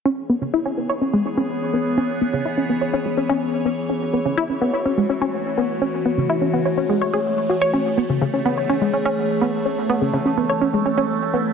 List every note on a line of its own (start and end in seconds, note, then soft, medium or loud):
0.05 11.53 E3 medium
0.05 3.86 B3 medium
0.05 0.09 C#4 medium
0.05 3.86 G#4 medium
0.05 11.53 C#5 medium
0.29 0.36 B3 medium
0.41 0.51 C#3 medium
0.53 0.60 E4 loud
0.65 0.72 C#4 medium
0.77 0.87 B3 medium
0.89 0.93 C#5 medium
1.01 1.08 C#4 medium
1.13 1.23 G#3 medium
1.25 1.29 C#4 medium
1.37 1.41 C#4 loud
1.73 1.83 B3 medium
1.97 2.01 C#4 medium
2.21 2.28 B3 medium
2.33 2.43 C#3 medium
2.45 2.52 E4 loud
2.57 2.64 C#4 medium
2.69 2.79 B3 medium
2.81 2.85 C#5 medium
2.93 3.00 C#4 medium
3.05 3.15 G#3 medium
3.17 3.21 C#4 medium
3.29 3.33 C#4 loud
3.65 3.75 B3 medium
3.89 11.53 A3 medium
3.89 3.93 C#4 medium
3.89 7.70 F#4 medium
4.13 4.20 B3 medium
4.25 4.35 C#3 medium
4.37 4.44 E4 loud
4.49 4.56 C#4 medium
4.61 4.71 B3 medium
4.73 4.77 C#5 medium
4.85 4.92 C#4 medium
4.97 5.07 G#3 medium
5.09 5.13 C#4 medium
5.21 5.25 C#4 medium
5.57 5.67 B3 medium
5.81 5.85 C#4 medium
6.05 6.12 B3 medium
6.17 6.27 C#3 medium
6.29 6.36 E4 loud
6.41 6.48 C#4 medium
6.53 6.63 B3 medium
6.65 6.69 C#5 medium
6.77 6.84 C#4 medium
6.89 6.99 G#3 medium
7.01 7.08 C#5 medium
7.13 7.20 G#4 loud
7.49 7.56 F#4 medium
7.61 7.71 C#5 loud
7.73 7.77 C#4 medium
7.73 9.64 G#4 medium
7.97 8.04 B3 medium
8.10 8.19 C#3 medium
8.21 8.25 C#3 loud
8.34 8.40 C#4 medium
8.45 8.55 B3 medium
8.57 8.61 C#5 medium
8.69 8.76 C#4 medium
8.81 8.91 G#3 medium
8.93 8.97 C#4 medium
9.05 9.09 C#4 loud
9.41 9.51 B3 medium
9.65 9.69 C#4 medium
9.65 11.53 A4 medium
9.89 9.96 B3 medium
10.01 10.11 C#3 medium
10.13 10.17 C#3 loud
10.25 10.32 C#4 medium
10.37 10.47 B3 medium
10.49 10.53 C#5 medium
10.61 10.68 C#4 medium
10.74 10.83 G#3 medium
10.86 10.89 C#4 medium
10.98 11.01 C#4 loud
11.34 11.43 B3 medium